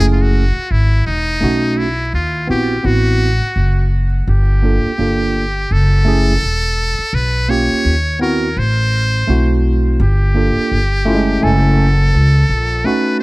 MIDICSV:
0, 0, Header, 1, 5, 480
1, 0, Start_track
1, 0, Tempo, 714286
1, 954, Time_signature, 4, 2, 24, 8
1, 8890, End_track
2, 0, Start_track
2, 0, Title_t, "Muted trumpet"
2, 0, Program_c, 0, 59
2, 0, Note_on_c, 0, 68, 99
2, 37, Note_off_c, 0, 68, 0
2, 84, Note_on_c, 0, 65, 69
2, 145, Note_on_c, 0, 66, 90
2, 155, Note_off_c, 0, 65, 0
2, 478, Note_on_c, 0, 64, 87
2, 488, Note_off_c, 0, 66, 0
2, 712, Note_off_c, 0, 64, 0
2, 716, Note_on_c, 0, 63, 94
2, 1193, Note_on_c, 0, 64, 82
2, 1203, Note_off_c, 0, 63, 0
2, 1433, Note_off_c, 0, 64, 0
2, 1441, Note_on_c, 0, 65, 81
2, 1661, Note_off_c, 0, 65, 0
2, 1684, Note_on_c, 0, 67, 81
2, 1918, Note_on_c, 0, 66, 90
2, 1928, Note_off_c, 0, 67, 0
2, 2636, Note_off_c, 0, 66, 0
2, 2888, Note_on_c, 0, 67, 84
2, 3846, Note_on_c, 0, 69, 105
2, 3856, Note_off_c, 0, 67, 0
2, 4805, Note_on_c, 0, 71, 103
2, 4815, Note_off_c, 0, 69, 0
2, 5037, Note_on_c, 0, 73, 104
2, 5047, Note_off_c, 0, 71, 0
2, 5515, Note_off_c, 0, 73, 0
2, 5521, Note_on_c, 0, 70, 86
2, 5765, Note_on_c, 0, 72, 101
2, 5775, Note_off_c, 0, 70, 0
2, 6479, Note_off_c, 0, 72, 0
2, 6733, Note_on_c, 0, 67, 93
2, 7685, Note_on_c, 0, 69, 97
2, 7695, Note_off_c, 0, 67, 0
2, 8639, Note_on_c, 0, 71, 100
2, 8649, Note_off_c, 0, 69, 0
2, 8868, Note_off_c, 0, 71, 0
2, 8890, End_track
3, 0, Start_track
3, 0, Title_t, "Tine electric piano"
3, 0, Program_c, 1, 4
3, 0, Note_on_c, 1, 57, 65
3, 0, Note_on_c, 1, 61, 61
3, 0, Note_on_c, 1, 64, 58
3, 4, Note_on_c, 1, 68, 72
3, 286, Note_off_c, 1, 57, 0
3, 289, Note_off_c, 1, 61, 0
3, 293, Note_off_c, 1, 64, 0
3, 295, Note_off_c, 1, 68, 0
3, 945, Note_on_c, 1, 57, 68
3, 952, Note_on_c, 1, 61, 63
3, 958, Note_on_c, 1, 63, 62
3, 965, Note_on_c, 1, 66, 76
3, 1246, Note_off_c, 1, 57, 0
3, 1249, Note_off_c, 1, 61, 0
3, 1252, Note_off_c, 1, 63, 0
3, 1256, Note_off_c, 1, 66, 0
3, 1661, Note_on_c, 1, 59, 70
3, 1668, Note_on_c, 1, 60, 65
3, 1673, Note_on_c, 1, 64, 63
3, 1680, Note_on_c, 1, 66, 70
3, 1848, Note_off_c, 1, 59, 0
3, 1851, Note_off_c, 1, 60, 0
3, 1854, Note_off_c, 1, 64, 0
3, 1857, Note_off_c, 1, 66, 0
3, 1902, Note_on_c, 1, 59, 63
3, 1907, Note_on_c, 1, 60, 59
3, 1913, Note_on_c, 1, 64, 60
3, 1919, Note_on_c, 1, 66, 70
3, 2204, Note_off_c, 1, 59, 0
3, 2207, Note_off_c, 1, 60, 0
3, 2210, Note_off_c, 1, 64, 0
3, 2212, Note_off_c, 1, 66, 0
3, 3107, Note_on_c, 1, 58, 55
3, 3114, Note_on_c, 1, 62, 52
3, 3120, Note_on_c, 1, 65, 54
3, 3126, Note_on_c, 1, 69, 64
3, 3291, Note_off_c, 1, 58, 0
3, 3294, Note_off_c, 1, 62, 0
3, 3297, Note_off_c, 1, 65, 0
3, 3300, Note_off_c, 1, 69, 0
3, 3348, Note_on_c, 1, 58, 63
3, 3354, Note_on_c, 1, 62, 58
3, 3361, Note_on_c, 1, 65, 55
3, 3366, Note_on_c, 1, 69, 67
3, 3647, Note_off_c, 1, 58, 0
3, 3650, Note_off_c, 1, 62, 0
3, 3653, Note_off_c, 1, 65, 0
3, 3656, Note_off_c, 1, 69, 0
3, 4064, Note_on_c, 1, 57, 77
3, 4071, Note_on_c, 1, 61, 66
3, 4078, Note_on_c, 1, 64, 69
3, 4085, Note_on_c, 1, 68, 82
3, 4249, Note_off_c, 1, 57, 0
3, 4253, Note_off_c, 1, 61, 0
3, 4256, Note_off_c, 1, 64, 0
3, 4260, Note_off_c, 1, 68, 0
3, 5030, Note_on_c, 1, 58, 65
3, 5034, Note_on_c, 1, 61, 56
3, 5041, Note_on_c, 1, 65, 59
3, 5046, Note_on_c, 1, 67, 74
3, 5328, Note_off_c, 1, 58, 0
3, 5330, Note_off_c, 1, 61, 0
3, 5334, Note_off_c, 1, 65, 0
3, 5336, Note_off_c, 1, 67, 0
3, 5505, Note_on_c, 1, 59, 67
3, 5512, Note_on_c, 1, 60, 67
3, 5519, Note_on_c, 1, 64, 68
3, 5526, Note_on_c, 1, 66, 78
3, 5690, Note_off_c, 1, 59, 0
3, 5693, Note_off_c, 1, 60, 0
3, 5696, Note_off_c, 1, 64, 0
3, 5700, Note_off_c, 1, 66, 0
3, 6232, Note_on_c, 1, 57, 69
3, 6236, Note_on_c, 1, 60, 62
3, 6245, Note_on_c, 1, 64, 60
3, 6249, Note_on_c, 1, 66, 71
3, 6713, Note_off_c, 1, 57, 0
3, 6715, Note_off_c, 1, 60, 0
3, 6719, Note_off_c, 1, 64, 0
3, 6721, Note_off_c, 1, 66, 0
3, 6952, Note_on_c, 1, 58, 65
3, 6959, Note_on_c, 1, 62, 58
3, 6963, Note_on_c, 1, 65, 57
3, 6970, Note_on_c, 1, 69, 71
3, 7249, Note_off_c, 1, 58, 0
3, 7252, Note_off_c, 1, 62, 0
3, 7255, Note_off_c, 1, 65, 0
3, 7258, Note_off_c, 1, 69, 0
3, 7427, Note_on_c, 1, 57, 88
3, 7435, Note_on_c, 1, 61, 79
3, 7439, Note_on_c, 1, 64, 77
3, 7445, Note_on_c, 1, 65, 78
3, 7491, Note_off_c, 1, 65, 0
3, 7491, Note_on_c, 1, 56, 88
3, 7658, Note_off_c, 1, 57, 0
3, 7664, Note_off_c, 1, 61, 0
3, 7666, Note_on_c, 1, 57, 62
3, 7671, Note_off_c, 1, 64, 0
3, 7672, Note_on_c, 1, 61, 55
3, 7679, Note_on_c, 1, 64, 57
3, 7684, Note_on_c, 1, 80, 71
3, 7814, Note_off_c, 1, 56, 0
3, 7966, Note_off_c, 1, 57, 0
3, 7969, Note_off_c, 1, 61, 0
3, 7972, Note_off_c, 1, 64, 0
3, 7975, Note_off_c, 1, 80, 0
3, 8630, Note_on_c, 1, 57, 72
3, 8635, Note_on_c, 1, 61, 68
3, 8643, Note_on_c, 1, 63, 67
3, 8648, Note_on_c, 1, 66, 77
3, 8890, Note_off_c, 1, 57, 0
3, 8890, Note_off_c, 1, 61, 0
3, 8890, Note_off_c, 1, 63, 0
3, 8890, Note_off_c, 1, 66, 0
3, 8890, End_track
4, 0, Start_track
4, 0, Title_t, "Upright bass"
4, 0, Program_c, 2, 32
4, 0, Note_on_c, 2, 30, 99
4, 355, Note_off_c, 2, 30, 0
4, 474, Note_on_c, 2, 32, 90
4, 702, Note_off_c, 2, 32, 0
4, 717, Note_on_c, 2, 28, 78
4, 943, Note_off_c, 2, 28, 0
4, 957, Note_on_c, 2, 35, 90
4, 1412, Note_off_c, 2, 35, 0
4, 1434, Note_on_c, 2, 39, 83
4, 1662, Note_off_c, 2, 39, 0
4, 1673, Note_on_c, 2, 34, 77
4, 1901, Note_off_c, 2, 34, 0
4, 1911, Note_on_c, 2, 33, 96
4, 2274, Note_off_c, 2, 33, 0
4, 2391, Note_on_c, 2, 30, 91
4, 2848, Note_off_c, 2, 30, 0
4, 2872, Note_on_c, 2, 31, 98
4, 3234, Note_off_c, 2, 31, 0
4, 3352, Note_on_c, 2, 31, 86
4, 3809, Note_off_c, 2, 31, 0
4, 3836, Note_on_c, 2, 30, 91
4, 4291, Note_off_c, 2, 30, 0
4, 4317, Note_on_c, 2, 28, 80
4, 4677, Note_off_c, 2, 28, 0
4, 4791, Note_on_c, 2, 35, 94
4, 5153, Note_off_c, 2, 35, 0
4, 5274, Note_on_c, 2, 39, 86
4, 5730, Note_off_c, 2, 39, 0
4, 5756, Note_on_c, 2, 33, 104
4, 6211, Note_off_c, 2, 33, 0
4, 6239, Note_on_c, 2, 35, 87
4, 6692, Note_off_c, 2, 35, 0
4, 6717, Note_on_c, 2, 31, 106
4, 7077, Note_off_c, 2, 31, 0
4, 7201, Note_on_c, 2, 31, 85
4, 7653, Note_off_c, 2, 31, 0
4, 7677, Note_on_c, 2, 30, 103
4, 8132, Note_off_c, 2, 30, 0
4, 8159, Note_on_c, 2, 37, 101
4, 8384, Note_off_c, 2, 37, 0
4, 8395, Note_on_c, 2, 34, 96
4, 8622, Note_off_c, 2, 34, 0
4, 8890, End_track
5, 0, Start_track
5, 0, Title_t, "Muted upright bass strokes"
5, 379, Note_on_c, 9, 29, 44
5, 447, Note_off_c, 9, 29, 0
5, 2293, Note_on_c, 9, 29, 47
5, 2360, Note_off_c, 9, 29, 0
5, 3258, Note_on_c, 9, 29, 46
5, 3326, Note_off_c, 9, 29, 0
5, 4695, Note_on_c, 9, 29, 46
5, 4762, Note_off_c, 9, 29, 0
5, 5174, Note_on_c, 9, 29, 47
5, 5241, Note_off_c, 9, 29, 0
5, 7098, Note_on_c, 9, 29, 48
5, 7165, Note_off_c, 9, 29, 0
5, 8890, End_track
0, 0, End_of_file